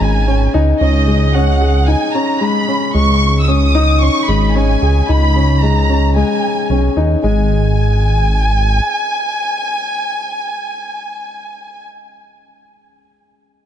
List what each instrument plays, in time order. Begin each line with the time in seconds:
Already playing: grand piano G#3 C#4 D#4
0.01 detuned saw bass G#1, violin section G#5
0.27 grand piano C#4
0.54 detuned saw bass C#2, grand piano D#4
0.81 detuned saw bass C#2, grand piano C#4, violin section D#5
1.08 grand piano G#3
1.34 grand piano C#4, violin section F#5
1.61 grand piano G#4
1.88 grand piano D#4, violin section G#5
2.14 grand piano C#4, violin section A#5
2.41 grand piano G#3, violin section B5
2.68 grand piano C#4
2.94 detuned saw bass C#2, grand piano G#3, violin section C#6
3.42 violin section E6
3.48 grand piano C#4, violin section D#6
3.75 grand piano D#4
4.01 grand piano C#4, violin section C#6
4.28 detuned saw bass G#1, grand piano G#3, violin section B5
4.55 grand piano C#4, violin section G#5
4.82 detuned saw bass C#2, grand piano G#4
5.09 detuned saw bass C#2, grand piano D#4, violin section B5
5.36 grand piano C#4
5.63 grand piano G#3, violin section A#5
5.89 grand piano C#4
6.16 grand piano G#3, violin section G#5
6.70 detuned saw bass B1, grand piano C#4
6.97 detuned saw bass D#2, grand piano D#4
7.24 detuned saw bass G#1, grand piano G#3, violin section G#5